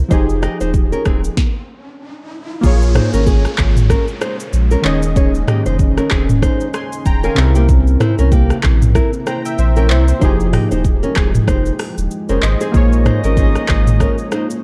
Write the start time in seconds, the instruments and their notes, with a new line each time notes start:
0.08 sub bass F1, synth keys F3 D#4 G4, nylon-string guitar D#4 C5, kick, riser, shaker
0.13 synth keys G#4
0.29 shaker
0.42 nylon-string guitar G4 D#5, cross-stick, shaker
0.61 sub bass D#1, nylon-string guitar D#4 C5, shaker
0.74 kick, shaker
0.92 nylon-string guitar C#4 A#4, shaker
1.05 sub bass D#1, nylon-string guitar C4 G#4, kick, cross-stick, shaker
1.24 shaker
1.37 kick, snare
2.61 sub bass A#1, ambient pad G#3 A#3 C#4, synth keys A#3 F4 G#4, kick, downlifter, shaker
2.66 synth keys C#5
2.82 shaker
2.95 nylon-string guitar D#4 C5, cross-stick, mid tom, shaker
3.13 sub bass G#1, nylon-string guitar C#4 A#4, shaker
3.27 nylon-string guitar C#4 G#4, kick, shaker
3.45 cross-stick, shaker
3.58 sub bass G#1, kick, cross-stick, clap, shaker
3.77 mid tom, shaker
3.90 nylon-string guitar C#4 A#4, kick, cross-stick, shaker
4.08 shaker
4.21 nylon-string guitar D#4 C5, cross-stick, shaker
4.40 shaker
4.53 sub bass A#1, shaker
4.71 nylon-string guitar C#4 A#4, shaker
4.82 sub bass D#1, synth keys D#3 C#4 G#4, ambient pad D#3 G#4, nylon-string guitar G#4 C#5, clap, shaker
4.87 synth keys D#5
5.03 shaker
5.16 nylon-string guitar G#4 C#5, kick, shaker
5.35 shaker
5.48 nylon-string guitar G4 D#5, cross-stick, mid tom, shaker
5.66 sub bass F1, nylon-string guitar D#4 C5, shaker
5.79 kick, shaker
5.97 nylon-string guitar C#4 A#4, cross-stick, shaker
6.10 sub bass D#1, nylon-string guitar C4 G#4, kick, cross-stick, clap, shaker
6.29 mid tom, shaker
6.42 nylon-string guitar D#4 C5, kick, cross-stick, shaker
6.60 shaker
6.74 synth keys G#5 C6, cross-stick, shaker
6.93 shaker
7.06 sub bass D#1, synth keys G5 A#5, kick, shaker
7.24 nylon-string guitar C#4 A#4, synth keys F5 G#5, shaker
7.35 sub bass C2, synth keys C3 C4 E4, ambient pad C3 A#3 E4, clap, shaker
7.40 synth keys A#4
7.55 nylon-string guitar A#3 G4, shaker
7.69 kick, shaker
7.87 shaker
8.00 nylon-string guitar E4 C5, cross-stick, mid tom, shaker
8.19 sub bass C2, nylon-string guitar C#4 A#4, shaker
8.32 nylon-string guitar A#3 G4, kick, shaker
8.50 cross-stick, shaker
8.63 sub bass A#1, kick, cross-stick, clap, shaker
8.82 mid tom, shaker
8.95 nylon-string guitar E4 A#4, kick, cross-stick, shaker
9.13 shaker
9.27 nylon-string guitar E4 C5, synth keys G5 A#5, cross-stick, shaker
9.45 synth keys E5 G5, shaker
9.58 sub bass A#1, synth keys C5 E5, shaker
9.76 nylon-string guitar C#4 A#4, synth keys E5 G5, shaker
9.90 sub bass C2, nylon-string guitar E4 C5, synth keys C5 E5, clap, shaker
10.08 synth keys C5, shaker
10.19 sub bass F1, synth keys F3 D#4 G4, ambient pad F3 G#3 D#4 G5, nylon-string guitar D#4 C5, kick, shaker
10.24 synth keys G#4
10.40 shaker
10.53 nylon-string guitar G4 D#5, cross-stick, mid tom, open hi-hat, shaker
10.71 sub bass D#1, nylon-string guitar D#4 C5, shaker
10.84 kick, shaker
11.03 nylon-string guitar C#4 A#4, shaker
11.16 sub bass D#1, nylon-string guitar C4 G#4, kick, cross-stick, clap, shaker
11.35 mid tom, shaker
11.48 sub bass F1, nylon-string guitar D#4 C5, kick, cross-stick, shaker
11.66 shaker
11.79 cross-stick, open hi-hat, shaker
11.98 sub bass D#1, shaker
12.11 shaker
12.29 sub bass F1, nylon-string guitar C#4 A#4, synth keys G#4 C5, shaker
12.42 sub bass G#1, synth keys C5 D#5, clap, shaker
12.61 nylon-string guitar C4 G#4, synth keys G#4 C5, shaker
12.72 sub bass A#1, ambient pad G#3 A#3 C#4, synth keys A#3 F4 G#4, horn section A#3 D#4 G#4 D#5, kick, shaker
12.77 synth keys C#5
12.93 shaker
13.05 nylon-string guitar D#4 C5, cross-stick, mid tom, shaker
13.24 sub bass G#1, nylon-string guitar C#4 A#4, shaker
13.37 nylon-string guitar C#4 G#4, kick, shaker
13.55 cross-stick, shaker
13.68 sub bass G#1, kick, cross-stick, clap, shaker
13.87 mid tom, shaker
14.00 nylon-string guitar C#4 A#4, kick, cross-stick, shaker
14.18 shaker
14.32 nylon-string guitar D#4 C5, cross-stick, shaker
14.50 shaker